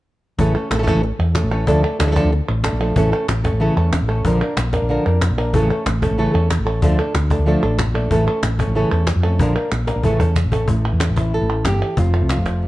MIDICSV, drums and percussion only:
0, 0, Header, 1, 3, 480
1, 0, Start_track
1, 0, Tempo, 321888
1, 579, Time_signature, 4, 2, 24, 8
1, 18904, End_track
2, 0, Start_track
2, 0, Title_t, "Cajon"
2, 576, Note_on_c, 9, 36, 89
2, 725, Note_off_c, 9, 36, 0
2, 821, Note_on_c, 9, 38, 28
2, 970, Note_off_c, 9, 38, 0
2, 1057, Note_on_c, 9, 38, 90
2, 1206, Note_off_c, 9, 38, 0
2, 1295, Note_on_c, 9, 36, 72
2, 1295, Note_on_c, 9, 38, 28
2, 1444, Note_off_c, 9, 36, 0
2, 1444, Note_off_c, 9, 38, 0
2, 1775, Note_on_c, 9, 38, 27
2, 1924, Note_off_c, 9, 38, 0
2, 2010, Note_on_c, 9, 38, 88
2, 2160, Note_off_c, 9, 38, 0
2, 2493, Note_on_c, 9, 36, 89
2, 2642, Note_off_c, 9, 36, 0
2, 2980, Note_on_c, 9, 38, 94
2, 3130, Note_off_c, 9, 38, 0
2, 3220, Note_on_c, 9, 36, 73
2, 3220, Note_on_c, 9, 38, 30
2, 3369, Note_off_c, 9, 36, 0
2, 3369, Note_off_c, 9, 38, 0
2, 3933, Note_on_c, 9, 38, 84
2, 4083, Note_off_c, 9, 38, 0
2, 4414, Note_on_c, 9, 36, 88
2, 4563, Note_off_c, 9, 36, 0
2, 4658, Note_on_c, 9, 38, 28
2, 4807, Note_off_c, 9, 38, 0
2, 4898, Note_on_c, 9, 38, 94
2, 5047, Note_off_c, 9, 38, 0
2, 5138, Note_on_c, 9, 36, 77
2, 5138, Note_on_c, 9, 38, 29
2, 5287, Note_off_c, 9, 36, 0
2, 5287, Note_off_c, 9, 38, 0
2, 5856, Note_on_c, 9, 36, 57
2, 5856, Note_on_c, 9, 38, 92
2, 6006, Note_off_c, 9, 36, 0
2, 6006, Note_off_c, 9, 38, 0
2, 6333, Note_on_c, 9, 36, 93
2, 6482, Note_off_c, 9, 36, 0
2, 6575, Note_on_c, 9, 38, 29
2, 6724, Note_off_c, 9, 38, 0
2, 6814, Note_on_c, 9, 38, 95
2, 6963, Note_off_c, 9, 38, 0
2, 7051, Note_on_c, 9, 36, 71
2, 7051, Note_on_c, 9, 38, 31
2, 7200, Note_off_c, 9, 36, 0
2, 7200, Note_off_c, 9, 38, 0
2, 7776, Note_on_c, 9, 38, 87
2, 7925, Note_off_c, 9, 38, 0
2, 8257, Note_on_c, 9, 36, 91
2, 8407, Note_off_c, 9, 36, 0
2, 8497, Note_on_c, 9, 38, 29
2, 8646, Note_off_c, 9, 38, 0
2, 8740, Note_on_c, 9, 38, 89
2, 8889, Note_off_c, 9, 38, 0
2, 8980, Note_on_c, 9, 36, 75
2, 9129, Note_off_c, 9, 36, 0
2, 9699, Note_on_c, 9, 38, 90
2, 9848, Note_off_c, 9, 38, 0
2, 10176, Note_on_c, 9, 36, 93
2, 10325, Note_off_c, 9, 36, 0
2, 10419, Note_on_c, 9, 38, 31
2, 10568, Note_off_c, 9, 38, 0
2, 10656, Note_on_c, 9, 38, 90
2, 10805, Note_off_c, 9, 38, 0
2, 10890, Note_on_c, 9, 36, 72
2, 11040, Note_off_c, 9, 36, 0
2, 11611, Note_on_c, 9, 36, 57
2, 11611, Note_on_c, 9, 38, 88
2, 11760, Note_off_c, 9, 36, 0
2, 11760, Note_off_c, 9, 38, 0
2, 12091, Note_on_c, 9, 36, 94
2, 12240, Note_off_c, 9, 36, 0
2, 12330, Note_on_c, 9, 38, 31
2, 12479, Note_off_c, 9, 38, 0
2, 12568, Note_on_c, 9, 38, 95
2, 12717, Note_off_c, 9, 38, 0
2, 12809, Note_on_c, 9, 36, 74
2, 12959, Note_off_c, 9, 36, 0
2, 13522, Note_on_c, 9, 38, 90
2, 13671, Note_off_c, 9, 38, 0
2, 14009, Note_on_c, 9, 36, 95
2, 14158, Note_off_c, 9, 36, 0
2, 14490, Note_on_c, 9, 38, 60
2, 14639, Note_off_c, 9, 38, 0
2, 14726, Note_on_c, 9, 38, 67
2, 14875, Note_off_c, 9, 38, 0
2, 14963, Note_on_c, 9, 36, 78
2, 15113, Note_off_c, 9, 36, 0
2, 15206, Note_on_c, 9, 36, 74
2, 15355, Note_off_c, 9, 36, 0
2, 15446, Note_on_c, 9, 36, 71
2, 15595, Note_off_c, 9, 36, 0
2, 15683, Note_on_c, 9, 36, 69
2, 15833, Note_off_c, 9, 36, 0
2, 15921, Note_on_c, 9, 36, 86
2, 16070, Note_off_c, 9, 36, 0
2, 16404, Note_on_c, 9, 38, 92
2, 16553, Note_off_c, 9, 38, 0
2, 16648, Note_on_c, 9, 36, 74
2, 16797, Note_off_c, 9, 36, 0
2, 17128, Note_on_c, 9, 38, 26
2, 17277, Note_off_c, 9, 38, 0
2, 17368, Note_on_c, 9, 36, 52
2, 17368, Note_on_c, 9, 38, 88
2, 17517, Note_off_c, 9, 36, 0
2, 17517, Note_off_c, 9, 38, 0
2, 17850, Note_on_c, 9, 36, 84
2, 18000, Note_off_c, 9, 36, 0
2, 18092, Note_on_c, 9, 38, 28
2, 18241, Note_off_c, 9, 38, 0
2, 18332, Note_on_c, 9, 38, 85
2, 18481, Note_off_c, 9, 38, 0
2, 18574, Note_on_c, 9, 36, 72
2, 18574, Note_on_c, 9, 38, 27
2, 18724, Note_off_c, 9, 36, 0
2, 18724, Note_off_c, 9, 38, 0
2, 18904, End_track
3, 0, Start_track
3, 0, Title_t, "Drums"
3, 1067, Note_on_c, 9, 39, 79
3, 1216, Note_off_c, 9, 39, 0
3, 2021, Note_on_c, 9, 39, 75
3, 2170, Note_off_c, 9, 39, 0
3, 2983, Note_on_c, 9, 39, 81
3, 3132, Note_off_c, 9, 39, 0
3, 3944, Note_on_c, 9, 39, 77
3, 4093, Note_off_c, 9, 39, 0
3, 4187, Note_on_c, 9, 39, 45
3, 4336, Note_off_c, 9, 39, 0
3, 4906, Note_on_c, 9, 39, 79
3, 5055, Note_off_c, 9, 39, 0
3, 5856, Note_on_c, 9, 39, 77
3, 6005, Note_off_c, 9, 39, 0
3, 6098, Note_on_c, 9, 39, 44
3, 6247, Note_off_c, 9, 39, 0
3, 6820, Note_on_c, 9, 39, 78
3, 6970, Note_off_c, 9, 39, 0
3, 7784, Note_on_c, 9, 39, 76
3, 7933, Note_off_c, 9, 39, 0
3, 8749, Note_on_c, 9, 39, 77
3, 8898, Note_off_c, 9, 39, 0
3, 8990, Note_on_c, 9, 39, 43
3, 9139, Note_off_c, 9, 39, 0
3, 9702, Note_on_c, 9, 39, 77
3, 9851, Note_off_c, 9, 39, 0
3, 10660, Note_on_c, 9, 39, 79
3, 10809, Note_off_c, 9, 39, 0
3, 11622, Note_on_c, 9, 39, 73
3, 11771, Note_off_c, 9, 39, 0
3, 11859, Note_on_c, 9, 39, 43
3, 12008, Note_off_c, 9, 39, 0
3, 12574, Note_on_c, 9, 39, 82
3, 12723, Note_off_c, 9, 39, 0
3, 13532, Note_on_c, 9, 39, 77
3, 13681, Note_off_c, 9, 39, 0
3, 14489, Note_on_c, 9, 39, 77
3, 14638, Note_off_c, 9, 39, 0
3, 15453, Note_on_c, 9, 39, 75
3, 15603, Note_off_c, 9, 39, 0
3, 15704, Note_on_c, 9, 39, 47
3, 15853, Note_off_c, 9, 39, 0
3, 16418, Note_on_c, 9, 39, 73
3, 16567, Note_off_c, 9, 39, 0
3, 17381, Note_on_c, 9, 39, 70
3, 17530, Note_off_c, 9, 39, 0
3, 18349, Note_on_c, 9, 39, 74
3, 18498, Note_off_c, 9, 39, 0
3, 18583, Note_on_c, 9, 39, 43
3, 18732, Note_off_c, 9, 39, 0
3, 18904, End_track
0, 0, End_of_file